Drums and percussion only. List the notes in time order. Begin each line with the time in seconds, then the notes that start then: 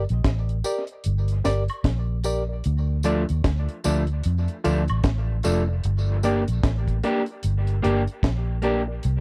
0.09 closed hi-hat
0.24 kick, snare, closed hi-hat
0.49 closed hi-hat
0.64 closed hi-hat, tambourine
0.87 closed hi-hat
1.04 closed hi-hat
1.28 closed hi-hat
1.45 snare, closed hi-hat, tambourine
1.68 closed hi-hat, high woodblock
1.84 kick, snare, closed hi-hat
2.24 closed hi-hat, tambourine
2.64 closed hi-hat
3.03 closed hi-hat, tambourine
3.29 closed hi-hat
3.44 kick, snare, closed hi-hat
3.69 closed hi-hat
3.84 closed hi-hat, tambourine
4.07 closed hi-hat
4.24 closed hi-hat
4.48 closed hi-hat
4.65 closed hi-hat, tambourine
4.88 closed hi-hat, high woodblock
5.04 kick, snare, closed hi-hat
5.43 closed hi-hat, tambourine
5.84 closed hi-hat
6.23 closed hi-hat, tambourine
6.48 closed hi-hat
6.63 kick, snare, closed hi-hat
6.88 kick, closed hi-hat
7.03 closed hi-hat
7.26 closed hi-hat
7.43 closed hi-hat
7.67 closed hi-hat
7.84 closed hi-hat
8.07 closed hi-hat
8.23 kick, snare, closed hi-hat
8.62 closed hi-hat
9.03 closed hi-hat